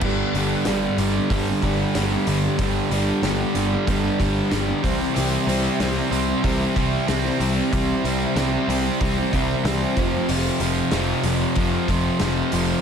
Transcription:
<<
  \new Staff \with { instrumentName = "Steel-string acoustic guitar" } { \time 4/4 \key g \mixolydian \tempo 4 = 94 <g, d g b d' g'>8 <g b d' g'>8 <g, d g b d' g'>16 <g b d' g'>8 <g b d' g'>16 <g b d' g'>16 <g b d' g'>16 <g b d' g'>8 <g, d g b d' g'>16 <g b d' g'>8 <g b d' g'>16 | <g, d g b d' g'>8 <g b d' g'>8 <g, d g b d' g'>16 <g b d' g'>8 <g b d' g'>16 <g b d' g'>16 <g b d' g'>16 <g b d' g'>8 <g, d g b d' g'>16 <g b d' g'>16 <c e g c' e'>16 <g c' e'>16 | <c e g c' e'>8 <e g c' e'>8 <c e g c' e'>16 <g c' e'>8 <g c' e'>16 <e g c' e'>16 <g c' e'>16 <e g c' e'>8 <c e g c' e'>16 <g c' e'>8 <g c' e'>16 | <c e g c' e'>8 <e g c' e'>8 <c e g c' e'>16 <g c' e'>8 <g c' e'>16 <e g c' e'>16 <g c' e'>16 <e g c' e'>8 <c e g c' e'>16 <g c' e'>16 <f, c f a c' f'>16 <f a c' f'>16 |
r1 | }
  \new Staff \with { instrumentName = "Distorted electric guitar" } { \clef bass \time 4/4 \key g \mixolydian <g, d g>8 <g, d g>8 <g, d g>8 <g, d g>8 <g, d g>8 <g, d g>8 <g, d g>8 <g, d g>8 | <g, d g>8 <g, d g>8 <g, d g>8 <g, d g>8 <g, d g>8 <g, d g>8 <g, d g>8 <c g c'>8 | <c g c'>8 <c g c'>8 <c g c'>8 <c g c'>8 <c g c'>8 <c g c'>8 <c g c'>8 <c g c'>8 | <c g c'>8 <c g c'>8 <c g c'>8 <c g c'>8 <c g c'>8 <c g c'>8 <c g c'>8 <f, c f>8 |
<f, c f>8 <f, c f>8 <f, c f>8 <f, c f>8 <f, c f>8 <f, c f>8 <f, c f>8 <f, c f>8 | }
  \new Staff \with { instrumentName = "Overdriven electric guitar" } { \clef bass \time 4/4 \key g \mixolydian <g, d g>8 <g, d g>8 <g, d g>8 <g, d g>8 <g, d g>8 <g, d g>8 <g, d g>8 <g, d g>8 | <g, d g>8 <g, d g>8 <g, d g>8 <g, d g>8 <g, d g>8 <g, d g>8 <g, d g>8 <c g c'>8 | <c g c'>8 <c g c'>8 <c g c'>8 <c g c'>8 <c g c'>8 <c g c'>8 <c g c'>8 <c g c'>8 | <c g c'>8 <c g c'>8 <c g c'>8 <c g c'>8 <c g c'>8 <c g c'>8 <c g c'>8 <f, c f>8 |
<f, c f>8 <f, c f>8 <f, c f>8 <f, c f>8 <f, c f>8 <f, c f>8 <f, c f>8 <f, c f>8 | }
  \new Staff \with { instrumentName = "Picked electric bass" } { \clef bass \time 4/4 \key g \mixolydian g,,8 g,,8 g,,8 g,,8 g,,8 g,,8 g,,8 g,,8 | g,,8 g,,8 g,,8 g,,8 g,,8 g,,8 g,,8 c,8 | c,8 c,8 c,8 c,8 c,8 c,8 c,8 c,8 | c,8 c,8 c,8 c,8 c,8 c,8 c,8 f,,8 |
f,,8 f,,8 f,,8 f,,8 f,,8 f,,8 f,,8 f,,8 | }
  \new DrumStaff \with { instrumentName = "Drums" } \drummode { \time 4/4 <cymc bd>8 hho8 <hho sn>8 hho8 <hho bd>8 <hho bd>8 <hho sn>8 hho8 | <hho bd>8 hho8 <hho sn>8 hho8 <hho bd>8 <hho bd>8 <hho sn>8 <hho bd>8 | hho8 hho8 <hho sn>8 hho8 <hho bd>8 <hho bd>8 <hho sn>8 hho8 | <hho bd>8 hho8 <hho sn>8 hho8 <hho bd>8 <hho bd>8 <hho sn>8 <hho bd>8 |
hho8 hho8 <hho sn>8 hho8 <hho bd>8 <hho bd>8 <hho sn>8 hho8 | }
>>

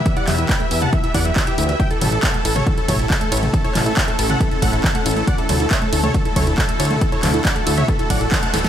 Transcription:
<<
  \new Staff \with { instrumentName = "Supersaw synth" } { \time 4/4 \key a \mixolydian \tempo 4 = 138 e''16 <d'' fis''>16 e''16 e''16 <g'' b''>16 e''16 e''16 <fis'' a''>16 e''16 e''16 <d'' fis''>16 e''16 e''16 <g' e''>16 e''16 e''16 | <e'' g''>16 a'16 a'16 a'16 <a' fis''>16 a'16 a'16 <a' cis''>16 a'16 a'16 <a' cis''>16 a'16 a'16 a'16 <a' cis''>16 a'16 | a'16 <a' cis''>16 a'16 a'16 <e'' g''>16 a'16 a'16 <a' fis''>16 a'16 a'16 <a' fis''>16 a'16 a'16 <a' fis''>16 a'16 a'16 | <d'' fis''>16 a'16 a'16 a'16 <cis'' e''>16 a'16 a'16 <a' cis''>16 a'16 a'16 <a' cis''>16 a'16 a'16 a'16 <a' cis''>16 a'16 |
a'16 <a' cis''>16 a'16 a'16 <d'' fis''>16 a'16 a'16 <cis'' e''>16 a'16 a'16 <d'' fis''>16 a'16 a'16 <fis'' a''>16 a'16 a'16 | }
  \new Staff \with { instrumentName = "Ambient pad" } { \time 4/4 \key a \mixolydian << { <e e' g' b'>1 | <cis' e'>1~ | <cis' e'>1 | <d e' fis'>1~ |
<d e' fis'>1 | } \\ { r1 | a1~ | a1~ | a1~ |
a1 | } >> }
  \new Staff \with { instrumentName = "Synth arpeggio sound" } { \time 4/4 \key a \mixolydian e16 e'16 fis16 e'16 e16 a16 e'16 a16 e16 e'16 e'16 fis16 e16 e'16 e'16 e16 | e16 e'16 fis16 e'16 e16 a16 e'16 a16 e16 e'16 fis16 e'16 e16 a16 e'16 a16 | e16 e'16 fis16 e'16 e16 a16 e'16 a16 e16 e'16 fis16 e'16 e16 a16 e'16 a16 | e16 e'16 fis16 e'16 e16 a16 e'16 a16 e16 e'16 fis16 e'16 e16 a16 e'16 a16 |
e16 e'16 fis16 e'16 e16 a16 e'16 a16 e16 e'16 fis16 e'16 e16 a16 e'16 a16 | }
  \new Staff \with { instrumentName = "Analog synth bass" } { \clef bass \time 4/4 \key a \mixolydian r8 e,8 r8 e,8 r8 e,8 r8 d,8 | r8 a,,8 r8 a,,8 r8 a,,8 r8 a,,8 | r8 a,,8 r8 a,,8 r8 a,,8 r8 a,,8 | r8 d,8 r8 d,8 r8 d,8 r8 d,8 |
r8 d,8 r8 d,8 r8 a,,8 r8 d,,8 | }
  \new DrumStaff \with { instrumentName = "Drums" } \drummode { \time 4/4 <hh bd>16 hh16 <hc hho toml>16 hh16 <hc hh bd>16 hh16 hho16 toml16 <hh bd>16 hh16 <hho bd>16 hh16 <hc hh bd>16 hh16 hho32 hh32 hh16 | <hh bd>16 hh16 <hho cymr toml>8 <hc hh bd>16 hh16 <hho cymr>16 <hh toml>16 <hh bd>16 hh16 <hho bd cymr toml>16 hh16 <hc hh bd>16 hh16 <hho cymr>32 hh32 <hh toml>16 | <hh bd>16 hh16 <hc hho cymr toml>16 hh16 <hc hh bd>16 hh16 <hho cymr>16 <hh toml>16 <hh bd>16 hh16 <hho bd cymr>16 hh16 <hc hh bd>16 hh16 <hho cymr>32 hh32 hh16 | <hh bd>16 hh16 <hho cymr toml>16 hh16 <hc hh bd>16 hh16 <hho cymr>16 <hh toml>16 <hh bd>16 hh16 <hho bd cymr toml>16 hh16 <hc hh bd>16 hh16 <hho cymr>32 hh32 <hh toml>16 |
<hh bd>16 hh16 <hc hho cymr toml>16 hh16 <hc hh bd>16 hh16 <hho cymr>16 <hh toml>16 <hh bd>16 hh16 <hho bd cymr>16 hh16 <hc hh bd>16 hh16 <hho cymr sn>32 hh32 <hh sn>16 | }
>>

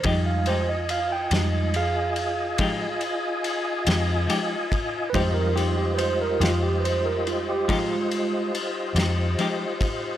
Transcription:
<<
  \new Staff \with { instrumentName = "Tonewheel organ" } { \time 12/8 \key f \dorian \tempo 4. = 47 <f' ees'' aes''>1. | <f' g' c'' ees''>1. | }
  \new Staff \with { instrumentName = "Tine electric piano" } { \time 12/8 \key f \dorian ees''16 f''16 c''16 ees''16 f''16 g''16 ees''8 <aes' f''>2. r4 | <b' c''>16 bes'16 f'16 g'16 <b' c''>16 bes'16 f'16 g'16 <b' c''>16 bes'16 f'16 g'16 <aes f'>4 r2 | }
  \new Staff \with { instrumentName = "Tine electric piano" } { \clef bass \time 12/8 \key f \dorian <g aes ees'>8 r4 <g aes ees'>8 r1 | <g aes ees'>1. | }
  \new Staff \with { instrumentName = "Clean electric guitar" } { \time 12/8 \key f \dorian <f aes ees' g'>8 <aes ees' g'>8 r8 <aes ees' g'>8 r4 <f aes ees' g'>8 r4 <aes ees' g'>8 <f aes ees' g'>8 r8 | <f aes ees' g'>8 <aes ees' g'>8 r8 <aes ees' g'>8 r4 <f aes ees' g'>8 r4 <aes ees' g'>8 <f aes ees' g'>8 r8 | }
  \new Staff \with { instrumentName = "Fingered electric bass" } { \clef bass \time 12/8 \key f \dorian f,4. f,4. c,8 r4 f,8 r4 | f,4. f,4. c,8 r4 f,8 r4 | }
  \new DrumStaff \with { instrumentName = "Drums" } \drummode { \time 12/8 <bd cymr>8 cymr8 cymr8 <cymr sn>8 cymr8 cymr8 <bd cymr>8 cymr8 cymr8 <cymr sn>8 cymr8 <bd cymr>8 | <bd cymr>8 cymr8 cymr8 <cymr sn>8 cymr8 cymr8 <bd cymr>8 cymr8 cymr8 <cymr sn>8 cymr8 <bd cymr>8 | }
>>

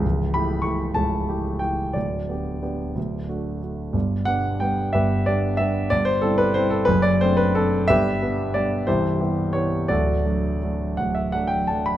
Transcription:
<<
  \new Staff \with { instrumentName = "Grand piano" } { \time 6/8 \key g \major \tempo 4. = 60 r8 b''8 cis'''8 a''4 g''8 | d''2~ d''8 r8 | r8 fis''8 g''8 <g' b' e''>8 d''8 e''8 | d''16 c''16 a'16 b'16 c''16 a'16 b'16 d''16 c''16 b'16 a'8 |
<g' b' e''>4 d''8 <e' g' c''>4 cis''8 | <fis' a' d''>4. fis''16 e''16 fis''16 g''16 a''16 b''16 | }
  \new Staff \with { instrumentName = "Grand piano" } { \time 6/8 \key g \major <cis,, cis,>8 <a e' g'>8 <a e' g'>8 <cis,, cis,>8 <a e' g'>8 <a e' g'>8 | <d,, d,>8 <b d' g'>8 <b d' g'>8 <d,, d,>8 <a d' fis'>8 <a d' fis'>8 | <g,, g,>8 <g b d'>8 <g b d'>8 <g,, g,>8 <g b d'>8 <g b d'>8 | <g,, g,>8 <g c' e'>8 <g c' e'>8 <fis,, fis,>8 <a c' d'>8 <a c' d'>8 |
<g,, g,>8 <g b d'>8 <g b d'>8 <c,, c,>8 <g b e'>8 <g b e'>8 | <d,, d,>8 <fis a d'>8 <fis a d'>8 <d,, d,>8 <fis a d'>8 <fis a d'>8 | }
>>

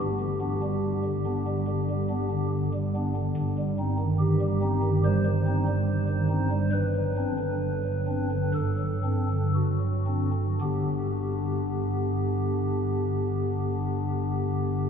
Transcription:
<<
  \new Staff \with { instrumentName = "Pipe organ" } { \time 4/4 \key g \major \tempo 4 = 69 g'2. r4 | r4 g'4 c''2 | b'2 a'4 fis'4 | <g, d b d' g'>1 | }
  \new Staff \with { instrumentName = "Pipe organ" } { \clef bass \time 4/4 \key g \major << { g,16 d16 <b d'>16 g8 d16 <b d'>16 g16 d16 g16 <b d'>16 d8 g16 <b d'>16 d16 | g,16 g16 <c' ees'>16 ees8 g16 <c' ees'>16 ees16 g16 ees16 <c' ees'>16 g8 ees16 <c' ees'>16 g16 | g,16 fis16 <c' d'>16 d8 fis16 <c' d'>16 d16 g,16 fis16 <c' d'>16 d8 fis16 <c' d'>16 d16 | r1 | } \\ { g,,1 | g,,1 | g,,2 g,,2 | g,,1 | } >> }
>>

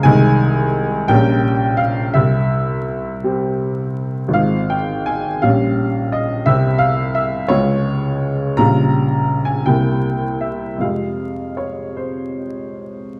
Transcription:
<<
  \new Staff \with { instrumentName = "Upright piano" } { \time 6/8 \key f \minor \tempo 4. = 55 aes''4. g''4 f''8 | e''2~ e''8 r8 | f''8 g''8 aes''8 f''4 ees''8 | e''8 f''8 e''8 des''4. |
bes''4~ bes''16 aes''16 g''4 e''8 | f''4 des''8 c''4. | }
  \new Staff \with { instrumentName = "Upright piano" } { \clef bass \time 6/8 \key f \minor <c, ees aes aes'>4. <bes,, g des' bes'>4. | c,4. <g c' g'>4. | <aes,, aes c' f'>4. <bes,, g des' g'>4. | <c, g c' g'>4. <des, des aes f'>4. |
<bes,, des g f'>4. <c, c bes e'>4. | <f, c aes f'>2. | }
>>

